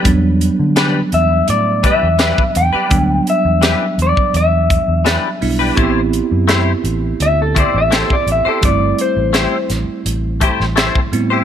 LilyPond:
<<
  \new Staff \with { instrumentName = "Clean electric guitar" } { \time 4/4 \key e \minor \tempo 4 = 84 r4. e''8 d''8 e''4 g''8~ | g''8 e''4 d''8 e''2 | r2 e''16 a'16 d''16 e''16 a'16 d''16 e''16 a'16 | d''8 c''4 r2 r8 | }
  \new Staff \with { instrumentName = "Clean electric guitar" } { \time 4/4 \key e \minor r4 <e d' g' b'>16 r4 r16 <e d' g' b'>16 r16 <e d' g' b'>16 r8 <d' g' b'>16 | r4 <e d' g' b'>16 r4. r16 <e d' g' b'>16 r8 <d' g' b'>16 | <a e' g' c''>16 r8. <a e' g' c''>16 r4 r16 <a e' g' c''>16 r16 <a e' g' c''>16 r8 <e' g' c''>16 | r4 <a e' g' c''>16 r4 r16 <a e' g' c''>16 r16 <a e' g' c''>16 r8 <e' g' c''>16 | }
  \new Staff \with { instrumentName = "Tine electric piano" } { \time 4/4 \key e \minor <fis g b d'>1 | <fis g b d'>2.~ <fis g b d'>8 <g b d' e'>8 | <b c' e' g'>1 | <g a c' e'>2.~ <g a c' e'>8 <g b c' e'>8 | }
  \new Staff \with { instrumentName = "Fingered electric bass" } { \clef bass \time 4/4 \key e \minor e,8. d8. e,8 a,8. e,8 r16 e,16 r16 | d,8 r16 e,8 r16 e,16 r16 e,8. e,8 r16 b,,8 | a,,8. fis,8. a,,8 d,8. a,,8 r16 a,,16 r16 | g,,8 r16 a,,8 r16 a,,16 r16 a,,8. a,,8 r16 a,8 | }
  \new DrumStaff \with { instrumentName = "Drums" } \drummode { \time 4/4 <hh bd>8 hh8 <hh sn>8 hh8 hh8 <hh bd>8 <hh sn>16 bd16 hh8 | <hh bd>8 hh8 <hh sn>8 hh16 bd16 hh8 <hh bd>8 <hh sn>8 hho8 | <hh bd>8 hh8 <hh sn>8 hh8 hh8 <hh bd>8 <hh sn>16 bd16 hh8 | <hh bd>8 hh8 <hh sn>8 <hh sn>8 hh8 <hh bd>16 sn16 <hh sn>16 bd16 hh8 | }
>>